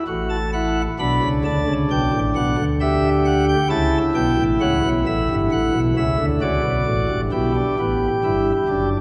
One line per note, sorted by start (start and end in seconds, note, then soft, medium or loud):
0.07 0.86 A1 medium
0.07 0.87 A2 medium
0.07 0.36 F#4 medium
0.29 0.50 A5 medium
0.53 0.82 E4 medium
0.53 0.82 F#5 medium
0.99 1.19 B1 medium
0.99 1.19 B2 medium
0.99 2.55 D4 medium
0.99 1.28 B5 medium
1.23 1.42 C#2 medium
1.23 1.42 C#3 medium
1.44 1.64 D2 medium
1.44 1.64 D3 medium
1.44 1.73 A5 medium
1.68 1.87 C#2 medium
1.68 1.87 C#3 medium
1.90 2.10 B1 medium
1.90 2.10 B2 medium
1.90 2.19 G5 medium
2.13 2.33 A1 medium
2.13 2.33 A2 medium
2.36 2.55 B1 medium
2.36 2.55 B2 medium
2.36 2.64 F#5 medium
2.58 3.55 D2 medium
2.58 3.55 D3 medium
2.80 3.58 G4 medium
2.80 3.09 E5 medium
3.25 3.45 F#5 medium
3.49 3.68 G5 medium
3.69 3.98 C#2 medium
3.69 3.98 C#3 medium
3.69 6.03 E4 medium
3.69 3.98 A5 loud
4.15 4.34 B1 medium
4.15 4.34 B2 medium
4.15 4.43 G5 medium
4.38 4.57 A1 medium
4.38 4.57 A2 medium
4.61 4.80 C#2 medium
4.61 4.80 C#3 medium
4.61 4.89 F#5 loud
4.84 5.03 B1 medium
4.84 5.03 B2 medium
5.06 5.26 A1 medium
5.06 5.26 A2 medium
5.06 5.34 E5 medium
5.30 5.49 G1 medium
5.30 5.49 G2 medium
5.51 5.71 A1 medium
5.51 5.71 A2 medium
5.51 5.80 F#5 medium
5.74 5.93 B1 medium
5.74 5.93 B2 medium
5.96 6.16 C#2 medium
5.96 6.16 C#3 medium
5.96 6.25 E5 medium
6.19 6.38 D2 medium
6.19 6.39 D3 medium
6.41 6.61 C#2 medium
6.41 6.61 C#3 medium
6.41 7.20 F#4 medium
6.41 7.20 D5 medium
6.63 6.83 B1 medium
6.63 6.83 B2 medium
6.86 7.06 A1 medium
6.86 7.06 A2 medium
7.08 7.29 G1 medium
7.08 7.29 G2 medium
7.32 7.61 B1 medium
7.32 7.61 B2 medium
7.32 7.52 E4 medium
7.32 8.89 G4 medium
7.55 7.75 D4 medium
7.79 8.07 A1 medium
7.79 8.07 A2 medium
7.79 8.07 B3 medium
8.24 8.52 G1 medium
8.24 8.52 G2 medium
8.24 8.52 E4 medium
8.68 8.96 F#1 medium
8.68 8.97 F#2 medium
8.68 8.97 D4 medium